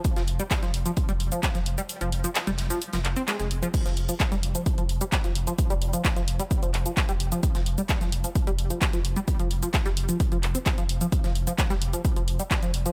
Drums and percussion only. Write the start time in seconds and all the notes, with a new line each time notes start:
0.04 kick, closed hi-hat, shaker
0.16 snare, closed hi-hat, shaker
0.27 closed hi-hat, open hi-hat
0.40 closed hi-hat, shaker
0.51 kick, snare, clap, closed hi-hat, shaker
0.63 snare, closed hi-hat, shaker
0.74 closed hi-hat, open hi-hat
0.86 closed hi-hat, shaker
0.97 kick, closed hi-hat, shaker
1.09 closed hi-hat, shaker
1.20 closed hi-hat, open hi-hat
1.32 closed hi-hat, shaker
1.43 kick, snare, clap, closed hi-hat, shaker
1.55 snare, closed hi-hat, shaker
1.66 closed hi-hat, open hi-hat
1.78 closed hi-hat, shaker
1.89 closed hi-hat, shaker
2.01 closed hi-hat, shaker
2.12 closed hi-hat, open hi-hat
2.24 closed hi-hat, shaker
2.35 snare, clap, closed hi-hat, shaker
2.47 snare, closed hi-hat, shaker
2.58 snare, closed hi-hat, open hi-hat
2.70 snare, closed hi-hat, shaker
2.82 closed hi-hat, shaker
2.93 snare, closed hi-hat, shaker
3.05 snare, clap, open hi-hat
3.16 closed hi-hat, shaker
3.28 snare, clap, closed hi-hat, shaker
3.39 snare, closed hi-hat, shaker
3.51 closed hi-hat, open hi-hat
3.63 closed hi-hat, shaker
3.74 kick, closed hi-hat, crash, shaker
3.86 snare, closed hi-hat, shaker
3.97 closed hi-hat, open hi-hat
4.09 closed hi-hat, shaker
4.20 kick, snare, clap, closed hi-hat, shaker
4.32 snare, closed hi-hat, shaker
4.43 closed hi-hat, open hi-hat
4.55 closed hi-hat, shaker
4.66 kick, closed hi-hat, shaker
4.78 closed hi-hat, shaker
4.89 closed hi-hat, open hi-hat
5.01 closed hi-hat, shaker
5.12 kick, snare, clap, closed hi-hat, shaker
5.24 snare, closed hi-hat, shaker
5.35 closed hi-hat, open hi-hat
5.47 closed hi-hat, shaker
5.58 kick, closed hi-hat, shaker
5.70 closed hi-hat, shaker
5.82 closed hi-hat, open hi-hat
5.93 closed hi-hat, shaker
6.04 kick, snare, clap, closed hi-hat, shaker
6.16 snare, closed hi-hat, shaker
6.28 closed hi-hat, open hi-hat
6.40 closed hi-hat, shaker
6.51 kick, closed hi-hat, shaker
6.63 closed hi-hat, shaker
6.74 clap, closed hi-hat, open hi-hat
6.86 closed hi-hat, shaker
6.97 kick, snare, clap, closed hi-hat, shaker
7.09 closed hi-hat, shaker
7.20 closed hi-hat, open hi-hat
7.32 closed hi-hat, shaker
7.43 kick, closed hi-hat, shaker
7.55 snare, closed hi-hat, shaker
7.66 closed hi-hat, open hi-hat
7.78 closed hi-hat, shaker
7.88 kick, snare, clap, closed hi-hat, shaker
8.01 snare, closed hi-hat, shaker
8.12 closed hi-hat, open hi-hat
8.24 closed hi-hat, shaker
8.35 kick, closed hi-hat, shaker
8.47 closed hi-hat, shaker
8.58 closed hi-hat, open hi-hat
8.70 closed hi-hat, shaker
8.81 kick, snare, clap, closed hi-hat, shaker
8.93 snare, closed hi-hat, shaker
9.05 closed hi-hat, open hi-hat
9.16 closed hi-hat, shaker
9.28 kick, closed hi-hat, shaker
9.39 closed hi-hat, shaker
9.51 closed hi-hat, open hi-hat
9.63 closed hi-hat, shaker
9.73 kick, snare, clap, closed hi-hat, shaker
9.85 snare, closed hi-hat, shaker
9.97 closed hi-hat, open hi-hat
10.09 closed hi-hat, shaker
10.20 kick, closed hi-hat, shaker
10.32 closed hi-hat, shaker
10.43 clap, closed hi-hat, open hi-hat
10.55 closed hi-hat, shaker
10.66 kick, snare, clap, closed hi-hat, shaker
10.78 closed hi-hat, shaker
10.89 closed hi-hat, open hi-hat
11.01 closed hi-hat, shaker
11.12 kick, closed hi-hat, shaker
11.24 snare, closed hi-hat, shaker
11.35 closed hi-hat, open hi-hat
11.47 closed hi-hat, shaker
11.58 kick, snare, clap, closed hi-hat, shaker
11.70 snare, closed hi-hat, shaker
11.82 closed hi-hat, open hi-hat
11.93 closed hi-hat, shaker
12.05 kick, closed hi-hat, shaker
12.16 closed hi-hat, shaker
12.28 closed hi-hat, open hi-hat
12.40 closed hi-hat, shaker
12.51 kick, snare, clap, closed hi-hat, shaker
12.62 snare, closed hi-hat, shaker
12.74 closed hi-hat, open hi-hat
12.86 closed hi-hat, shaker